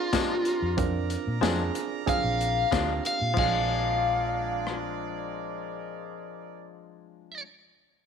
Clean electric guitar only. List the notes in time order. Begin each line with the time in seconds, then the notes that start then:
0.13 F3 G#3 D4
1.41 F3 G#3 D4
2.72 F3 G#3 D4
3.34 F3
3.39 G#3
3.43 D4